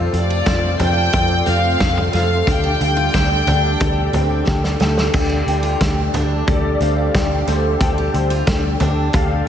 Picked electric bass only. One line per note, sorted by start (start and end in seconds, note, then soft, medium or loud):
0.13 0.41 F2 medium
0.47 0.74 F2 medium
0.80 1.07 F2 medium
1.13 1.41 F2 medium
1.47 1.74 F2 medium
1.80 2.08 F2 medium
2.13 2.41 F2 medium
2.47 2.75 D2 medium
2.80 3.08 D2 medium
3.14 3.41 D2 medium
3.47 3.74 D2 loud
3.81 4.08 D2 medium
4.13 4.41 D2 medium
4.47 4.75 D2 loud
4.80 5.08 D2 medium
5.14 5.41 D2 loud
5.46 5.74 D2 medium
5.81 6.08 D2 medium
6.14 6.41 D2 medium
6.48 6.75 D2 loud
6.80 7.08 D2 medium
7.15 7.42 D2 medium
7.47 7.75 D2 loud
7.81 8.08 D2 loud
8.14 8.41 D2 medium
8.47 8.75 D2 medium
8.80 9.08 D2 medium
9.14 9.41 D2 medium